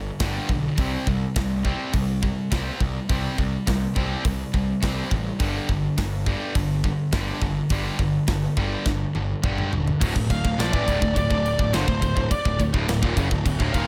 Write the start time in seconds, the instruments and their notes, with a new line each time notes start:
Already playing: distorted electric guitar G2 D3
0.20 picked electric bass G1, distorted electric guitar G2 D3 G3, kick, snare, open hi-hat
0.49 picked electric bass B1, distorted electric guitar G2 D3, kick
0.77 picked electric bass C2, distorted electric guitar C3 G3 C4, kick, open hi-hat
1.07 picked electric bass C2, distorted electric guitar C3 G3, kick
1.36 picked electric bass C2, distorted electric guitar C3 G3, kick, snare, open hi-hat
1.65 distorted electric guitar C3 G3 C4, kick
1.93 picked electric bass C2, distorted electric guitar C3 G3, kick, open hi-hat
2.22 distorted electric guitar C3 G3, kick
2.51 picked electric bass C2, distorted electric guitar C3 G3 C4, kick, snare, open hi-hat
2.80 picked electric bass C2, distorted electric guitar C3 G3, kick
3.09 picked electric bass C2, distorted electric guitar C3 G3 C4, kick, open hi-hat
3.37 picked electric bass C2, distorted electric guitar C3 G3, kick
3.66 picked electric bass C2, distorted electric guitar C3 G3, kick, snare, open hi-hat
3.95 picked electric bass C2, distorted electric guitar C3 G3 C4, kick
4.25 picked electric bass C2, distorted electric guitar C3 G3, kick, open hi-hat
4.54 picked electric bass C2, distorted electric guitar C3 G3, kick
4.81 picked electric bass C2, distorted electric guitar C3 G3 C4, kick, snare, open hi-hat
5.10 picked electric bass A1, distorted electric guitar C3 G3, kick
5.39 picked electric bass G1, distorted electric guitar G2 D3 G3, kick, open hi-hat
5.69 picked electric bass G1, distorted electric guitar G2 D3, kick
5.97 picked electric bass G1, distorted electric guitar G2 D3, kick, snare, open hi-hat
6.26 distorted electric guitar G2 D3 G3, kick
6.55 picked electric bass G1, distorted electric guitar G2 D3, kick, open hi-hat
6.84 distorted electric guitar G2 D3, kick
7.12 picked electric bass G1, distorted electric guitar G2 D3 G3, kick, snare, open hi-hat
7.42 picked electric bass G1, distorted electric guitar G2 D3, kick
7.69 picked electric bass G1, distorted electric guitar G2 D3 G3, kick, open hi-hat
7.99 picked electric bass G1, distorted electric guitar G2 D3, kick
8.27 picked electric bass G1, distorted electric guitar G2 D3, kick, snare, open hi-hat
8.57 picked electric bass G1, distorted electric guitar G2 D3 G3, kick
8.86 picked electric bass G1, distorted electric guitar G2 D3, kick, snare
9.15 picked electric bass G1, distorted electric guitar G2 D3, high tom
9.43 picked electric bass G1, distorted electric guitar G2 D3 G3, kick, mid tom
9.58 mid tom
9.72 picked electric bass D#1, distorted electric guitar G2 D3, floor tom
9.87 floor tom
10.01 picked electric bass D1, distorted electric guitar D2 A2, kick, crash
10.16 picked electric bass D1, distorted electric guitar D2 A2, kick
10.30 picked electric bass D1, distorted electric guitar D2 A2, lead electric guitar F5, kick, crash
10.44 picked electric bass D1, distorted electric guitar D2 A2, kick
10.58 picked electric bass A#1, distorted electric guitar A#2 F3, lead electric guitar D5, snare, crash
10.73 picked electric bass A1, distorted electric guitar A2 E3, kick
10.88 picked electric bass D1, distorted electric guitar D2 A2, kick, crash
11.02 picked electric bass D1, distorted electric guitar D2 A2, kick
11.16 picked electric bass D1, distorted electric guitar D2 A2, lead electric guitar D5, kick, crash
11.30 picked electric bass D1, distorted electric guitar D2 A2, kick
11.46 crash
11.59 picked electric bass D1, distorted electric guitar D2 A2, kick
11.73 picked electric bass G1, distorted electric guitar G2 D3, lead electric guitar C5, snare, crash
11.88 picked electric bass D1, distorted electric guitar D2 A2, kick
12.02 picked electric bass D1, distorted electric guitar D2 A2, kick, crash
12.17 picked electric bass D1, distorted electric guitar D2 A2, kick
12.31 lead electric guitar D5, muted overdriven electric guitar stroke, muted picked electric bass stroke, muted distorted electric guitar stroke, kick, crash
12.45 picked electric bass D1, distorted electric guitar D2 A2, kick
12.60 picked electric bass D1, distorted electric guitar D2 A2, kick, crash
12.73 picked electric bass D1, distorted electric guitar D2 A2, kick
12.88 picked electric bass D1, distorted electric guitar D2 A2, snare, crash
13.02 picked electric bass D#1, distorted electric guitar D#2 A#2, kick
13.15 picked electric bass F#1, distorted electric guitar F#2 C#3, kick, crash
13.30 picked electric bass D1, distorted electric guitar D2 A2, kick
13.45 picked electric bass D1, distorted electric guitar D2 A2, kick, crash
13.59 picked electric bass D1, distorted electric guitar D2 A2, kick
13.73 picked electric bass D#1, distorted electric guitar D#2 A#2, lead electric guitar F5, kick, crash